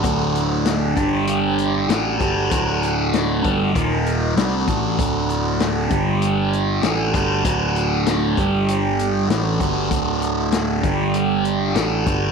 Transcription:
<<
  \new Staff \with { instrumentName = "Transistor combo organ" } { \time 4/4 \key d \major \tempo 4 = 97 << { <a fis'>4. <g g'>4. <a fis'>4~ | <a fis'>2 <bes bes'>4 <a fis'>4~ | <a fis'>4. <g g'>4. <a fis'>4~ | <a fis'>4. <g g'>4. <a fis'>4~ |
<a fis'>4. <g g'>4. <a fis'>4 | } \\ { d'1~ | d'2 ees'4 d'4~ | d'1~ | d'1~ |
d'1 | } >> }
  \new Staff \with { instrumentName = "Distorted electric guitar" } { \clef bass \time 4/4 \key d \major <d, a, d>4. <g, d g>4. <a, e a>8 <g, d g>8 | <d, a, d>4. <g, d g>8 <ees, bes, ees>4 <c g c'>8 <a, e a>8 | <d, a, d>4. <g, d g>4. <a, e a>8 <g, d g>8 | <d, a, d>4. <g, d g>4. <a, e a>8 <g, d g>8 |
<d, a, d>4. <g, d g>4. <a, e a>8 <g, d g>8 | }
  \new Staff \with { instrumentName = "Picked electric bass" } { \clef bass \time 4/4 \key d \major d,,4. g,,4. a,,8 g,,8 | d,,4. g,,8 ees,,4 c,8 a,,8 | d,,4. g,,4. a,,8 g,,8 | d,,4. g,,4. a,,8 g,,8 |
d,,4. g,,4. a,,8 g,,8 | }
  \new DrumStaff \with { instrumentName = "Drums" } \drummode { \time 4/4 <hh bd>8 hh8 <hh sn>8 <hh bd>8 hh8 hh8 <hh sn>8 <hh bd>8 | <hh bd>8 hh8 <hh sn>8 <hh bd>8 <hh bd>8 hh8 <hh sn>8 <hh bd>8 | <hh bd>8 hh8 <hh sn>8 <hh bd>8 hh8 hh8 <hh sn>8 <hh bd>8 | <hh bd>8 hh8 <hh sn>8 <hh bd>8 hh8 hh8 <hh sn>8 <hh bd>8 |
<hh bd>8 hh8 <hh sn>8 <hh bd>8 hh8 hh8 <hh sn>8 <hh bd>8 | }
>>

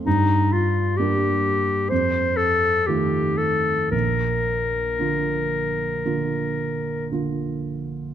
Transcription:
<<
  \new Staff \with { instrumentName = "Clarinet" } { \time 4/4 \key bes \major \tempo 4 = 57 ees'8 f'8 g'4 c''8 a'8 g'8 a'8 | bes'2. r4 | }
  \new Staff \with { instrumentName = "Grand piano" } { \time 4/4 \key bes \major g,4 <g bes d'>4 f,4 <ees a f'>4 | bes,,4 <d bes f'>4 <d bes f'>4 <d bes f'>4 | }
>>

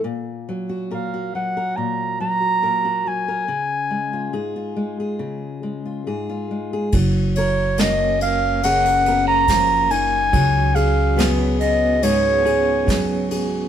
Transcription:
<<
  \new Staff \with { instrumentName = "Clarinet" } { \time 4/4 \key fis \major \tempo 4 = 70 r4 eis''8 fis''8 ais''8 ais''4 gis''8~ | gis''4. r2 r8 | r8 cis''8 dis''8 eis''8 fis''8. ais''8. gis''8~ | gis''8 eis''8. r16 dis''8 cis''4. r8 | }
  \new Staff \with { instrumentName = "Steel-string acoustic guitar" } { \time 4/4 \key fis \major << { r8. fis'16 ais'16 fis'8 ais'4 fis'16 ais'16 fis'8 ais'16 | r8. eis'16 gis'16 eis'8 gis'4 eis'16 gis'16 eis'8 gis'16 | r8 ais'4. gis'16 ais'16 ais'4. | r8 gis'8 b4 fis'8 gis'8 fis'8 gis'8 | } \\ { ais,8 fis8 ais,8 fis8 ais,8 fis8 ais,8 fis8 | cis8 gis8 gis,8 gis8 cis8 gis8 gis,8 gis8 | fis4 cis'4 cis4 eis8 dis8 | cis4 fis4 gis,4 fis4 | } >> }
  \new Staff \with { instrumentName = "Clean electric guitar" } { \time 4/4 \key fis \major r1 | r1 | r4 <ais cis'>8 ais8 <ais cis'>8 b16 cis'4~ cis'16 | fis4 <b cis' gis'>8 b8 <b cis' gis'>8 cis'4. | }
  \new Staff \with { instrumentName = "Upright bass" } { \clef bass \time 4/4 \key fis \major r1 | r1 | fis,,1 | cis,1 | }
  \new DrumStaff \with { instrumentName = "Drums" } \drummode { \time 4/4 r4 r4 r4 r4 | r4 r4 r4 r4 | <bd cymr>8 cymr8 <cymr sn>8 cymr8 cymr8 cymr8 <bd cymr sn>8 cymr8 | <bd cymr>8 cymr8 <cymr sn>8 cymr8 cymr8 cymr8 <bd cymr sn>8 cymr8 | }
>>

